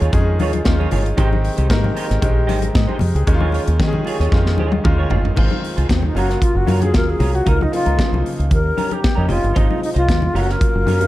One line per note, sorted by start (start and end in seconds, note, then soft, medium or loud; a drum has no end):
0.00 0.11 D#2 medium
0.00 0.12 D#3 loud
0.00 1.16 D#3 medium
0.00 0.13 G#3 medium
0.00 0.14 C#4 medium
0.00 1.16 C#4 medium
0.00 0.66 F4 loud
0.00 1.16 F4 medium
0.00 0.12 F4 medium
0.00 1.16 G#4 medium
0.00 0.13 G#4 medium
0.00 0.13 C#5 medium
0.00 closed hi-hat soft
0.12 0.40 F2 loud
0.12 0.59 D#3 medium
0.12 0.59 G#3 medium
0.12 0.59 C#4 medium
0.12 0.59 G#4 loud
0.12 muted clean electric guitar stroke soft
0.12 kick loud
0.12 closed hi-hat medium
0.28 muted clean electric guitar stroke medium
0.39 0.60 D#2 medium
0.39 0.60 F4 medium
0.39 0.54 G#4 medium
0.39 0.53 C#5 medium
0.39 open hi-hat medium
0.39 muted conga soft
0.39 high conga medium
0.53 muted clean electric guitar stroke medium
0.53 closed hi-hat medium
0.53 high conga medium
0.64 0.86 D#2 loud
0.64 1.11 D#3 medium
0.64 1.11 G#3 medium
0.64 1.12 C#4 medium
0.64 1.12 F4 loud
0.64 muted clean electric guitar stroke soft
0.64 kick loud
0.64 snare loud
0.64 closed hi-hat medium
0.64 muted conga soft
0.79 0.90 F4 medium
0.79 0.91 G#4 medium
0.79 0.91 C#5 medium
0.79 high conga medium
0.91 1.12 G1 medium
0.91 1.08 F4 medium
0.91 1.05 G#4 medium
0.91 1.05 C#5 medium
0.91 open hi-hat medium
0.91 muted conga soft
0.91 low conga medium
1.06 muted clean electric guitar stroke soft
1.06 closed hi-hat soft
1.17 1.48 G#1 loud
1.17 1.64 D#3 loud
1.17 3.25 G#3 medium
1.17 1.64 G#3 medium
1.17 3.25 C4 medium
1.17 1.64 C4 medium
1.17 1.38 D#4 medium
1.17 3.25 G4 medium
1.17 1.31 G4 loud
1.17 1.64 G4 loud
1.17 1.30 C5 loud
1.17 kick loud
1.17 closed hi-hat medium
1.17 muted conga soft
1.31 muted clean electric guitar stroke soft
1.31 high conga medium
1.42 muted clean electric guitar stroke soft
1.42 open hi-hat medium
1.42 muted conga soft
1.57 1.67 C2 medium
1.57 1.69 D#4 medium
1.57 1.69 G4 medium
1.57 1.69 C5 medium
1.57 closed hi-hat soft
1.70 1.90 G#2 loud
1.70 2.16 D#3 loud
1.70 2.16 G#3 medium
1.70 1.77 A#3 medium
1.70 2.17 A#4 loud
1.70 kick loud
1.70 snare loud
1.70 closed hi-hat medium
1.70 high conga medium
1.77 2.20 C4 medium
1.84 muted clean electric guitar stroke soft
1.84 high conga medium
1.84 low conga medium
1.96 2.16 D#4 medium
1.96 2.09 G4 medium
1.96 2.08 C5 loud
1.96 open hi-hat medium
2.09 2.20 G#1 loud
2.09 muted clean electric guitar stroke medium
2.09 snare soft
2.09 closed hi-hat soft
2.21 2.49 A#1 loud
2.21 2.68 D#3 medium
2.21 2.68 G#3 medium
2.21 2.68 C4 medium
2.21 2.68 G4 loud
2.21 kick loud
2.21 closed hi-hat medium
2.35 muted clean electric guitar stroke soft
2.47 2.69 G#1 medium
2.47 2.68 D#4 medium
2.47 2.61 G4 medium
2.47 2.60 C5 loud
2.47 open hi-hat medium
2.47 muted conga soft
2.47 high conga medium
2.61 muted clean electric guitar stroke soft
2.61 closed hi-hat medium
2.61 high conga medium
2.74 2.86 G#2 loud
2.74 2.88 D#5 medium
2.74 muted clean electric guitar stroke soft
2.74 kick loud
2.74 snare loud
2.74 closed hi-hat medium
2.87 2.99 D#4 medium
2.87 2.99 G4 medium
2.87 2.99 C5 loud
2.87 3.14 C5 medium
2.87 high conga medium
2.99 3.12 F2 medium
2.99 open hi-hat medium
2.99 muted conga soft
2.99 low conga medium
3.15 3.24 C#2 medium
3.15 3.40 G#4 medium
3.15 muted clean electric guitar stroke soft
3.15 closed hi-hat soft
3.26 3.58 D#2 loud
3.26 5.19 D#3 medium
3.26 3.73 D#3 medium
3.26 3.73 G#3 medium
3.26 5.19 C#4 medium
3.26 3.73 C#4 medium
3.26 3.35 D#4 medium
3.26 5.19 F4 medium
3.26 5.19 G#4 medium
3.26 muted clean electric guitar stroke soft
3.26 kick loud
3.26 closed hi-hat medium
3.34 3.77 F4 loud
3.40 3.52 F4 medium
3.40 3.52 G#4 medium
3.40 3.53 C#5 medium
3.40 high conga medium
3.52 3.69 F4 medium
3.52 3.65 G#4 medium
3.52 3.65 C#5 medium
3.52 open hi-hat medium
3.52 muted conga soft
3.66 3.77 D#2 loud
3.66 muted clean electric guitar stroke soft
3.66 closed hi-hat medium
3.78 4.26 D#3 medium
3.78 4.00 D#3 medium
3.78 4.26 G#3 medium
3.78 4.26 C#4 medium
3.78 3.87 G4 medium
3.78 muted clean electric guitar stroke soft
3.78 kick loud
3.78 snare loud
3.78 closed hi-hat medium
3.78 muted conga soft
3.78 high conga medium
3.88 4.30 G#4 loud
3.93 muted clean electric guitar stroke soft
3.93 high conga medium
3.93 low conga medium
4.05 4.20 F4 medium
4.05 4.19 G#4 medium
4.05 4.19 C#5 medium
4.05 open hi-hat medium
4.05 muted conga soft
4.20 4.29 D#2 medium
4.20 4.32 F4 medium
4.20 4.33 G#4 medium
4.20 4.33 C#5 medium
4.20 snare soft
4.20 closed hi-hat soft
4.32 4.59 F2 loud
4.32 4.78 D#3 medium
4.32 4.78 G#3 medium
4.32 4.78 C#4 medium
4.32 4.78 F4 loud
4.32 muted clean electric guitar stroke soft
4.32 kick loud
4.32 snare medium
4.46 muted clean electric guitar stroke medium
4.46 snare medium
4.58 4.78 D#2 loud
4.58 4.79 F4 medium
4.58 4.73 G#4 medium
4.58 4.72 C#5 medium
4.58 high conga medium
4.72 muted clean electric guitar stroke soft
4.72 high tom medium
4.72 high conga medium
4.84 5.05 D#2 medium
4.84 5.30 D#3 medium
4.84 5.30 G#3 medium
4.84 5.30 C#4 medium
4.84 5.31 F4 loud
4.84 muted clean electric guitar stroke soft
4.84 kick loud
4.84 mid tom medium
4.98 5.10 F4 medium
4.98 5.10 G#4 medium
4.98 5.11 C#5 medium
5.10 5.31 G1 medium
5.10 5.27 F4 medium
5.10 5.24 G#4 medium
5.10 5.23 C#5 medium
5.10 floor tom medium
5.10 muted conga soft
5.10 low conga medium
5.24 muted clean electric guitar stroke soft
5.24 floor tom medium
5.36 5.48 G#1 loud
5.36 6.05 D#3 medium
5.36 6.14 G#3 medium
5.36 6.06 G#3 medium
5.36 5.44 B3 medium
5.36 6.14 C4 medium
5.36 8.48 F4 medium
5.36 5.61 F4 medium
5.36 6.06 F4 loud
5.36 5.61 G#4 medium
5.36 5.62 C5 medium
5.36 kick loud
5.36 crash medium
5.36 muted conga soft
5.36 low conga medium
5.43 6.09 C4 medium
5.51 high conga medium
5.63 muted clean electric guitar stroke soft
5.63 open hi-hat medium
5.76 5.87 C2 medium
5.76 5.88 F4 medium
5.76 5.88 G#4 medium
5.76 5.89 C5 medium
5.76 closed hi-hat soft
5.89 6.09 D#2 medium
5.89 6.07 C4 medium
5.89 muted clean electric guitar stroke soft
5.89 kick loud
5.89 snare loud
5.89 closed hi-hat medium
5.89 muted conga soft
5.89 high conga medium
6.02 6.19 D#4 medium
6.02 muted clean electric guitar stroke soft
6.02 high conga medium
6.02 low conga medium
6.15 6.35 F#1 medium
6.15 6.61 C#3 medium
6.15 6.61 F#3 medium
6.15 7.45 F#3 medium
6.15 6.62 A#3 medium
6.15 6.31 C#4 medium
6.15 6.62 F4 medium
6.15 6.30 F4 medium
6.15 6.45 F#4 medium
6.15 7.45 A#4 medium
6.15 6.29 A#4 loud
6.15 open hi-hat medium
6.15 muted conga soft
6.30 6.40 C#4 medium
6.30 6.41 F4 soft
6.30 6.41 A#4 medium
6.30 snare soft
6.30 closed hi-hat soft
6.42 6.58 F4 medium
6.42 kick loud
6.42 closed hi-hat medium
6.55 6.65 F#1 medium
6.55 6.84 F#4 medium
6.55 muted clean electric guitar stroke soft
6.66 6.94 F#2 loud
6.66 6.79 C#3 medium
6.66 6.80 F#3 medium
6.66 6.80 A#3 medium
6.66 6.87 C#4 medium
6.66 6.82 F4 medium
6.66 6.81 F4 medium
6.66 6.81 A#4 medium
6.66 open hi-hat medium
6.66 muted conga soft
6.66 high conga medium
6.81 7.46 C#3 medium
6.81 7.46 F#3 medium
6.81 7.47 A#3 medium
6.81 7.47 G#4 medium
6.81 6.95 G#4 medium
6.81 muted clean electric guitar stroke medium
6.81 closed hi-hat soft
6.81 high conga medium
6.94 7.14 D#2 medium
6.94 7.11 A#4 loud
6.94 muted clean electric guitar stroke soft
6.94 kick loud
6.94 snare loud
6.94 closed hi-hat medium
7.08 7.36 G#4 medium
7.08 muted clean electric guitar stroke soft
7.19 7.40 C2 loud
7.19 7.40 C#4 medium
7.19 7.33 F4 medium
7.19 7.32 A#4 medium
7.19 open hi-hat medium
7.19 low conga medium
7.34 7.50 F#4 medium
7.34 muted clean electric guitar stroke soft
7.34 closed hi-hat soft
7.45 7.67 C#2 loud
7.45 8.50 C#3 medium
7.45 8.50 A#3 medium
7.45 7.66 D#4 medium
7.45 8.50 D#4 medium
7.45 7.60 F4 medium
7.45 7.59 A#4 medium
7.45 7.64 A#4 loud
7.45 kick loud
7.45 closed hi-hat medium
7.45 low conga medium
7.60 7.74 D#4 medium
7.60 muted clean electric guitar stroke soft
7.60 high conga medium
7.72 7.95 C#3 medium
7.72 7.96 F3 medium
7.72 7.96 A#3 medium
7.72 7.96 D#4 medium
7.72 8.23 F4 medium
7.72 muted clean electric guitar stroke soft
7.72 open hi-hat medium
7.72 muted conga soft
7.85 7.96 C#2 loud
7.85 7.97 D#4 medium
7.85 7.97 F4 medium
7.85 7.98 A#4 medium
7.85 closed hi-hat medium
7.97 8.51 C#3 medium
7.97 8.05 E3 medium
7.97 8.51 A#3 medium
7.97 8.51 D#4 medium
7.97 kick loud
7.97 snare loud
7.97 closed hi-hat medium
7.97 muted conga soft
7.97 high conga medium
8.04 8.54 F3 medium
8.11 8.22 C2 medium
8.11 muted clean electric guitar stroke soft
8.11 high conga medium
8.11 low conga medium
8.26 open hi-hat medium
8.26 muted conga soft
8.39 8.49 C#2 medium
8.39 muted clean electric guitar stroke soft
8.39 closed hi-hat soft
8.50 8.71 D#2 loud
8.50 9.55 D#3 medium
8.50 9.55 C#4 medium
8.50 9.55 G4 medium
8.50 8.94 A#4 medium
8.50 muted clean electric guitar stroke soft
8.50 kick loud
8.50 closed hi-hat medium
8.50 muted conga soft
8.65 muted clean electric guitar stroke soft
8.77 8.90 C#4 medium
8.77 8.89 G4 medium
8.77 8.88 A#4 loud
8.77 open hi-hat medium
8.77 muted conga soft
8.77 high conga medium
8.89 9.00 C#4 soft
8.89 9.01 G4 medium
8.89 9.30 G4 loud
8.89 9.01 A#4 medium
8.89 closed hi-hat soft
8.89 high conga medium
9.01 muted clean electric guitar stroke soft
9.01 kick loud
9.01 snare loud
9.01 closed hi-hat medium
9.15 9.27 F2 medium
9.15 9.55 C#3 medium
9.15 9.56 G3 medium
9.15 9.56 A#3 medium
9.15 9.27 C#4 medium
9.15 9.55 D#4 medium
9.15 9.27 G4 medium
9.15 9.28 A#4 medium
9.28 9.41 F1 loud
9.28 9.45 C#4 medium
9.28 9.59 F4 medium
9.28 9.42 G4 medium
9.28 9.42 C5 medium
9.28 open hi-hat medium
9.28 muted conga soft
9.28 low conga medium
9.42 9.53 G1 medium
9.42 muted clean electric guitar stroke medium
9.42 closed hi-hat soft
9.54 9.67 G#1 loud
9.54 10.24 C3 medium
9.54 10.25 F3 medium
9.54 10.25 G#3 medium
9.54 10.34 G#3 medium
9.54 10.34 C4 medium
9.54 9.79 D#4 medium
9.54 10.25 D#4 medium
9.54 9.83 D#4 medium
9.54 9.80 F4 medium
9.54 11.07 F4 medium
9.54 9.80 C5 medium
9.54 kick loud
9.54 closed hi-hat medium
9.54 muted conga soft
9.54 low conga medium
9.70 high conga medium
9.81 9.90 D#4 medium
9.81 muted clean electric guitar stroke soft
9.81 open hi-hat medium
9.94 10.05 C2 medium
9.94 10.05 D#4 medium
9.94 10.05 F4 medium
9.94 10.39 F4 loud
9.94 10.06 C5 medium
9.94 closed hi-hat soft
10.06 10.28 D#2 medium
10.06 muted clean electric guitar stroke soft
10.06 kick loud
10.06 closed hi-hat medium
10.06 muted conga soft
10.06 high conga medium
10.10 snare loud
10.21 muted clean electric guitar stroke soft
10.21 high conga medium
10.21 low conga medium
10.33 10.55 F#1 medium
10.33 10.80 C#3 medium
10.33 10.80 F#3 medium
10.33 11.07 F#3 medium
10.33 10.42 A3 medium
10.33 10.49 C#4 medium
10.33 10.81 F4 medium
10.33 10.48 F4 medium
10.33 10.53 F#4 medium
10.33 11.07 A#4 medium
10.33 10.47 A#4 medium
10.33 open hi-hat medium
10.41 10.84 A#3 medium
10.48 10.58 C#4 medium
10.48 10.60 F4 medium
10.48 10.60 A#4 medium
10.48 11.07 A#4 medium
10.48 snare soft
10.48 closed hi-hat soft
10.61 kick loud
10.61 closed hi-hat medium
10.74 10.85 F#1 loud
10.74 muted clean electric guitar stroke soft
10.86 11.07 F#2 loud
10.86 10.99 C#3 medium
10.86 10.99 F#3 medium
10.86 10.99 A#3 medium
10.86 11.07 C#4 medium
10.86 10.99 F4 medium
10.86 11.01 F4 medium
10.86 11.00 A#4 medium
10.86 open hi-hat medium
10.86 muted conga soft
10.86 high conga medium
11.00 11.07 C#3 medium
11.00 11.07 F#3 medium
11.00 11.07 A#3 medium
11.00 11.07 E4 medium
11.00 muted clean electric guitar stroke soft
11.00 closed hi-hat medium
11.00 high conga medium